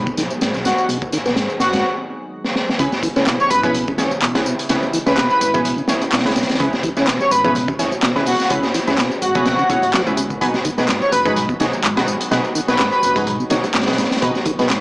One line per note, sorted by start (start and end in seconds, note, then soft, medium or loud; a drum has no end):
0.00 2.75 D#3 medium
0.00 2.75 F#3 medium
0.00 2.75 G#3 medium
0.00 2.75 B3 medium
0.00 2.76 G#4 medium
0.07 0.11 B2 loud
0.07 kick medium
0.07 tambourine soft
0.17 0.26 B1 medium
0.17 0.23 D#3 medium
0.17 snare soft
0.17 closed hi-hat medium
0.17 tambourine medium
0.17 low conga medium
0.30 tambourine soft
0.30 high conga medium
0.41 0.53 G#2 medium
0.41 snare loud
0.41 closed hi-hat medium
0.41 tambourine soft
0.54 0.61 B1 loud
0.54 snare soft
0.54 tambourine soft
0.65 0.74 G#2 medium
0.65 0.73 F#4 medium
0.65 snare loud
0.65 closed hi-hat medium
0.65 tambourine medium
0.78 0.85 F#4 medium
0.78 tambourine soft
0.89 0.97 B1 loud
0.89 0.98 B2 loud
0.89 closed hi-hat medium
0.89 tambourine soft
1.02 kick medium
1.02 tambourine soft
1.02 high conga medium
1.12 1.18 D#3 medium
1.12 snare soft
1.12 closed hi-hat medium
1.12 tambourine medium
1.26 1.33 B1 loud
1.26 1.35 B3 loud
1.26 snare soft
1.26 tambourine soft
1.36 1.49 G#2 medium
1.36 snare loud
1.36 closed hi-hat medium
1.36 tambourine soft
1.50 tambourine soft
1.60 1.76 F#1 loud
1.60 1.84 F#4 medium
1.60 snare loud
1.60 closed hi-hat medium
1.60 tambourine medium
1.60 high conga medium
1.73 1.84 G#2 loud
1.73 snare loud
1.73 closed hi-hat medium
1.73 tambourine soft
2.44 snare soft
2.56 snare medium
2.69 snare medium
2.79 2.88 C#2 loud
2.79 2.88 C#3 loud
2.79 10.37 C#3 medium
2.79 10.38 E3 medium
2.79 14.80 G#3 medium
2.79 14.80 B3 medium
2.79 2.94 C#4 medium
2.79 2.94 E4 medium
2.79 6.57 E4 medium
2.79 2.94 G#4 medium
2.79 2.94 B4 loud
2.79 kick loud
2.79 closed hi-hat medium
2.79 tambourine soft
2.92 snare medium
2.92 tambourine soft
2.92 high conga medium
3.03 3.08 E3 medium
3.03 kick medium
3.03 closed hi-hat medium
3.03 tambourine medium
3.03 high bongo medium
3.16 3.23 C#2 loud
3.16 3.26 C#4 loud
3.16 3.29 C#4 medium
3.16 3.29 E4 medium
3.16 3.29 G#4 medium
3.16 3.29 B4 medium
3.16 snare medium
3.16 tambourine soft
3.27 3.39 B2 medium
3.27 snare loud
3.27 clap loud
3.27 closed hi-hat medium
3.27 tambourine soft
3.40 3.49 C#5 medium
3.40 tambourine soft
3.50 3.67 G#1 loud
3.50 3.59 B4 medium
3.50 closed hi-hat medium
3.50 tambourine medium
3.50 high bongo medium
3.50 high conga medium
3.63 3.86 B2 loud
3.63 3.77 C#4 loud
3.63 3.77 E4 medium
3.63 3.77 G#4 medium
3.63 3.70 B4 medium
3.63 3.77 B4 loud
3.63 kick loud
3.63 tambourine soft
3.63 low conga medium
3.74 3.83 C#2 loud
3.74 closed hi-hat medium
3.74 tambourine soft
3.88 3.92 C#3 loud
3.88 kick loud
3.88 tambourine soft
3.88 high bongo medium
3.98 4.07 C#2 medium
3.98 4.04 E3 medium
3.98 4.13 C#4 medium
3.98 4.13 E4 medium
3.98 4.13 G#4 medium
3.98 4.13 C#5 medium
3.98 snare loud
3.98 closed hi-hat medium
3.98 tambourine medium
4.11 tambourine soft
4.11 high conga medium
4.22 4.34 B2 medium
4.22 clap loud
4.22 closed hi-hat medium
4.22 tambourine soft
4.35 4.42 C#2 medium
4.35 4.67 C#4 medium
4.35 4.67 E4 medium
4.35 4.67 G#4 medium
4.35 4.67 B4 medium
4.35 snare loud
4.35 closed hi-hat medium
4.35 tambourine soft
4.35 high bongo medium
4.46 4.55 B2 medium
4.46 tambourine medium
4.59 closed hi-hat medium
4.59 tambourine soft
4.69 4.78 C#2 loud
4.69 4.79 C#3 loud
4.69 4.85 C#4 medium
4.69 4.85 E4 medium
4.69 4.85 G#4 medium
4.69 4.85 B4 loud
4.69 snare loud
4.69 closed hi-hat medium
4.69 tambourine soft
4.69 high bongo soft
4.83 tambourine soft
4.83 high conga medium
4.93 4.99 E3 medium
4.93 closed hi-hat medium
4.93 tambourine medium
5.06 5.14 C#2 loud
5.06 5.16 C#4 loud
5.06 5.20 C#4 medium
5.06 5.20 E4 medium
5.06 5.20 G#4 medium
5.06 5.21 B4 medium
5.06 5.20 B4 medium
5.06 snare medium
5.06 tambourine soft
5.17 5.30 B2 medium
5.17 snare loud
5.17 clap loud
5.17 closed hi-hat medium
5.17 tambourine soft
5.17 high bongo medium
5.30 5.37 B4 medium
5.30 tambourine soft
5.41 5.57 G#1 loud
5.41 5.50 B4 medium
5.41 closed hi-hat medium
5.41 tambourine medium
5.41 high conga medium
5.54 5.77 B2 loud
5.54 5.67 C#4 loud
5.54 5.67 E4 medium
5.54 5.67 G#4 medium
5.54 5.67 B4 loud
5.54 kick medium
5.54 tambourine soft
5.54 high bongo soft
5.54 low conga medium
5.65 5.73 C#2 loud
5.65 closed hi-hat medium
5.65 tambourine soft
5.78 5.82 C#3 loud
5.78 tambourine soft
5.88 5.97 C#2 medium
5.88 5.94 E3 medium
5.88 6.04 C#4 medium
5.88 6.04 E4 medium
5.88 6.04 G#4 medium
5.88 6.04 C#5 medium
5.88 snare loud
5.88 closed hi-hat medium
5.88 tambourine medium
6.01 closed hi-hat soft
6.01 tambourine soft
6.01 high bongo medium
6.01 high conga loud
6.12 6.25 B2 medium
6.12 snare medium
6.12 clap loud
6.12 closed hi-hat medium
6.12 tambourine soft
6.19 snare medium
6.19 closed hi-hat medium
6.25 6.32 C#2 medium
6.25 6.58 C#4 medium
6.25 6.58 E4 medium
6.25 6.58 G#4 medium
6.25 6.57 B4 medium
6.25 snare medium
6.25 closed hi-hat medium
6.25 tambourine soft
6.30 snare medium
6.30 closed hi-hat medium
6.36 6.45 B2 medium
6.36 snare loud
6.36 closed hi-hat medium
6.36 tambourine medium
6.36 high bongo medium
6.43 snare medium
6.43 closed hi-hat medium
6.49 snare medium
6.49 closed hi-hat medium
6.49 tambourine soft
6.55 snare medium
6.55 closed hi-hat medium
6.60 6.69 C#2 loud
6.60 6.69 C#3 loud
6.60 6.75 C#4 medium
6.60 6.75 E4 medium
6.60 14.80 F#4 medium
6.60 6.75 G#4 medium
6.60 6.75 B4 loud
6.60 kick loud
6.60 closed hi-hat medium
6.60 tambourine soft
6.73 snare medium
6.73 tambourine soft
6.73 high conga medium
6.83 6.89 E3 medium
6.83 kick loud
6.83 closed hi-hat medium
6.83 tambourine medium
6.83 high bongo medium
6.97 7.04 C#2 loud
6.97 7.10 C#4 medium
6.97 7.07 C#4 loud
6.97 7.10 E4 medium
6.97 7.10 G#4 medium
6.97 7.10 B4 medium
6.97 snare soft
6.97 tambourine soft
7.07 7.20 B2 medium
7.07 snare loud
7.07 clap loud
7.07 closed hi-hat medium
7.07 tambourine soft
7.20 7.29 C#5 medium
7.20 tambourine soft
7.20 high bongo soft
7.31 7.48 G#1 loud
7.31 7.40 B4 medium
7.31 closed hi-hat medium
7.31 tambourine medium
7.31 high conga medium
7.44 7.67 B2 loud
7.44 7.58 C#4 loud
7.44 7.58 E4 medium
7.44 7.58 G#4 medium
7.44 7.58 B4 loud
7.44 7.51 B4 medium
7.44 kick loud
7.44 tambourine soft
7.44 low conga medium
7.55 7.64 C#2 loud
7.55 closed hi-hat medium
7.55 tambourine soft
7.68 7.73 C#3 loud
7.68 kick loud
7.68 tambourine soft
7.68 high bongo medium
7.79 7.87 C#2 medium
7.79 7.84 E3 medium
7.79 7.94 C#4 medium
7.79 7.94 E4 medium
7.79 7.94 G#4 medium
7.79 7.94 C#5 medium
7.79 snare soft
7.79 closed hi-hat medium
7.79 tambourine medium
7.92 tambourine soft
7.92 high conga loud
8.02 8.15 B2 medium
8.02 snare loud
8.02 clap loud
8.02 closed hi-hat medium
8.02 tambourine soft
8.02 high bongo soft
8.16 8.23 C#2 medium
8.16 8.48 C#4 medium
8.16 8.48 E4 medium
8.16 8.48 G#4 medium
8.16 8.48 B4 medium
8.16 snare soft
8.16 tambourine soft
8.26 8.36 B2 medium
8.26 8.35 F#4 medium
8.26 open hi-hat medium
8.26 tambourine medium
8.39 8.47 F#4 medium
8.39 snare soft
8.39 tambourine soft
8.50 8.59 C#2 loud
8.50 8.59 C#3 loud
8.50 8.66 C#4 medium
8.50 8.66 E4 medium
8.50 8.66 G#4 medium
8.50 8.66 B4 loud
8.50 kick loud
8.50 closed hi-hat medium
8.50 tambourine soft
8.50 high bongo medium
8.63 snare soft
8.63 tambourine soft
8.63 high conga medium
8.74 8.80 E3 medium
8.74 snare soft
8.74 closed hi-hat medium
8.74 tambourine medium
8.87 8.94 C#2 loud
8.87 8.97 C#4 loud
8.87 9.01 C#4 medium
8.87 9.01 E4 medium
8.87 9.01 G#4 medium
8.87 9.01 B4 medium
8.87 snare medium
8.87 tambourine soft
8.87 high bongo medium
8.98 9.11 B2 medium
8.98 snare loud
8.98 clap loud
8.98 closed hi-hat medium
8.98 tambourine soft
9.11 tambourine soft
9.22 9.38 G#1 loud
9.22 9.89 F#4 loud
9.22 closed hi-hat medium
9.22 tambourine medium
9.22 high conga medium
9.35 9.58 B2 loud
9.35 9.48 C#4 loud
9.35 9.48 E4 medium
9.35 9.48 G#4 medium
9.35 9.48 B4 loud
9.35 kick medium
9.35 tambourine soft
9.35 high bongo medium
9.35 low conga medium
9.45 9.54 C#2 loud
9.45 snare loud
9.45 closed hi-hat medium
9.45 tambourine soft
9.59 9.63 C#3 loud
9.59 tambourine soft
9.70 9.99 G#1 medium
9.70 9.79 B2 medium
9.70 9.85 C#4 medium
9.70 9.85 E4 medium
9.70 9.85 G#4 medium
9.70 9.85 C#5 medium
9.70 kick medium
9.70 closed hi-hat medium
9.70 tambourine medium
9.70 high bongo soft
9.82 closed hi-hat soft
9.82 tambourine soft
9.82 high conga medium
9.93 10.02 F#3 medium
9.93 snare loud
9.93 clap loud
9.93 closed hi-hat medium
9.93 tambourine soft
10.06 10.35 C#2 loud
10.06 10.38 C#4 medium
10.06 10.39 E4 medium
10.06 10.38 G#4 medium
10.06 10.38 B4 medium
10.06 tambourine soft
10.17 10.26 C#3 medium
10.17 closed hi-hat medium
10.17 tambourine medium
10.17 high bongo medium
10.30 kick medium
10.30 tambourine soft
10.41 10.50 B1 loud
10.41 10.50 B2 loud
10.41 14.80 D#3 medium
10.41 14.80 F#3 medium
10.41 10.56 D#4 medium
10.41 10.56 F#4 medium
10.41 10.56 G#4 medium
10.41 10.56 B4 loud
10.41 kick loud
10.41 closed hi-hat medium
10.41 tambourine soft
10.54 snare medium
10.54 tambourine soft
10.54 high conga loud
10.64 10.70 D#3 medium
10.64 kick medium
10.64 closed hi-hat medium
10.64 tambourine medium
10.64 high bongo soft
10.78 10.85 B1 loud
10.78 10.88 B3 loud
10.78 10.91 D#4 medium
10.78 10.91 F#4 medium
10.78 10.91 G#4 medium
10.78 10.91 B4 medium
10.78 snare medium
10.78 tambourine soft
10.89 11.01 G#2 medium
10.89 snare loud
10.89 clap loud
10.89 closed hi-hat medium
10.89 tambourine soft
11.01 11.10 C#5 medium
11.01 tambourine soft
11.12 11.29 F#1 loud
11.12 11.21 B4 medium
11.12 closed hi-hat medium
11.12 tambourine medium
11.12 high bongo medium
11.12 high conga medium
11.25 11.48 G#2 loud
11.25 11.39 D#4 loud
11.25 11.39 F#4 medium
11.25 11.39 G#4 loud
11.25 11.32 B4 medium
11.25 11.39 B4 loud
11.25 kick loud
11.25 tambourine soft
11.25 low conga medium
11.36 11.45 B1 loud
11.36 closed hi-hat medium
11.36 tambourine soft
11.49 11.54 B2 loud
11.49 kick medium
11.49 tambourine soft
11.49 high bongo medium
11.60 11.68 B1 medium
11.60 11.65 D#3 medium
11.60 11.75 D#4 medium
11.60 11.75 F#4 medium
11.60 11.75 G#4 medium
11.60 11.75 C#5 medium
11.60 snare loud
11.60 closed hi-hat medium
11.60 tambourine medium
11.73 tambourine soft
11.73 high conga medium
11.84 11.96 G#2 medium
11.84 clap loud
11.84 closed hi-hat medium
11.84 tambourine soft
11.97 12.04 B1 medium
11.97 12.29 D#4 medium
11.97 12.29 F#4 medium
11.97 12.29 G#4 medium
11.97 12.29 B4 medium
11.97 snare loud
11.97 closed hi-hat medium
11.97 tambourine soft
11.97 high bongo medium
12.08 12.17 G#2 medium
12.08 tambourine medium
12.21 closed hi-hat medium
12.21 tambourine soft
12.31 12.40 B1 loud
12.31 12.40 B2 loud
12.31 12.47 D#4 loud
12.31 12.47 F#4 medium
12.31 12.47 G#4 medium
12.31 12.47 B4 loud
12.31 snare loud
12.31 closed hi-hat medium
12.31 tambourine soft
12.31 high bongo soft
12.44 tambourine soft
12.44 high conga medium
12.55 12.61 D#3 medium
12.55 closed hi-hat medium
12.55 tambourine medium
12.68 12.75 B1 loud
12.68 12.78 B3 loud
12.68 12.82 D#4 medium
12.68 12.82 F#4 medium
12.68 12.82 G#4 medium
12.68 12.83 B4 medium
12.68 12.82 B4 medium
12.68 snare medium
12.68 tambourine soft
12.79 12.92 G#2 medium
12.79 snare loud
12.79 clap loud
12.79 closed hi-hat medium
12.79 tambourine soft
12.79 high bongo medium
12.92 12.99 B4 medium
12.92 tambourine soft
13.02 13.19 F#1 loud
13.02 13.11 B4 medium
13.02 closed hi-hat medium
13.02 tambourine medium
13.02 high conga medium
13.15 13.39 G#2 loud
13.15 13.29 D#4 loud
13.15 13.29 F#4 medium
13.15 13.29 G#4 medium
13.15 13.29 B4 loud
13.15 kick medium
13.15 tambourine soft
13.15 high bongo soft
13.15 low conga medium
13.27 13.35 B1 loud
13.27 closed hi-hat medium
13.27 tambourine soft
13.40 13.44 B2 loud
13.40 tambourine soft
13.50 13.59 B1 medium
13.50 13.56 D#3 medium
13.50 13.66 D#4 medium
13.50 13.66 F#4 medium
13.50 13.66 G#4 medium
13.50 13.66 C#5 medium
13.50 snare loud
13.50 closed hi-hat medium
13.50 tambourine medium
13.64 closed hi-hat soft
13.64 tambourine soft
13.64 high bongo medium
13.64 high conga medium
13.74 13.87 G#2 medium
13.74 snare loud
13.74 clap loud
13.74 closed hi-hat medium
13.74 tambourine soft
13.81 snare medium
13.81 closed hi-hat medium
13.87 13.94 B1 medium
13.87 14.20 D#4 medium
13.87 14.19 F#4 medium
13.87 14.20 G#4 medium
13.87 14.19 B4 medium
13.87 snare medium
13.87 closed hi-hat medium
13.87 tambourine soft
13.93 snare medium
13.93 closed hi-hat medium
13.98 14.07 G#2 medium
13.98 snare medium
13.98 closed hi-hat medium
13.98 tambourine medium
13.98 high bongo soft
14.05 snare medium
14.05 closed hi-hat medium
14.11 snare loud
14.11 closed hi-hat medium
14.11 tambourine soft
14.17 snare medium
14.17 closed hi-hat medium
14.22 14.31 B1 loud
14.22 14.31 B2 loud
14.22 14.37 D#4 medium
14.22 14.37 F#4 medium
14.22 14.37 G#4 medium
14.22 14.37 B4 loud
14.22 kick loud
14.22 closed hi-hat medium
14.22 tambourine soft
14.35 snare soft
14.35 tambourine soft
14.35 high conga medium
14.45 14.51 D#3 medium
14.45 kick loud
14.45 closed hi-hat medium
14.45 tambourine medium
14.45 high bongo medium
14.59 14.66 B1 loud
14.59 14.69 B3 loud
14.59 14.72 D#4 medium
14.59 14.72 F#4 medium
14.59 14.72 G#4 medium
14.59 14.72 B4 medium
14.59 snare medium
14.59 tambourine soft
14.70 14.80 G#2 medium
14.70 snare loud
14.70 clap loud
14.70 closed hi-hat medium
14.70 tambourine soft